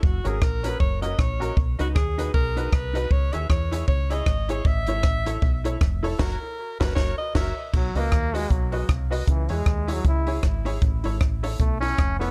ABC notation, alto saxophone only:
X:1
M:4/4
L:1/8
Q:"Swing" 1/4=156
K:B
V:1 name="Alto saxophone"
F G A B c d c2 | z F G2 A2 B2 | c e c2 c d2 c | e4- e z2 =A |
A3 B c d e2 | z8 | z8 | z8 |]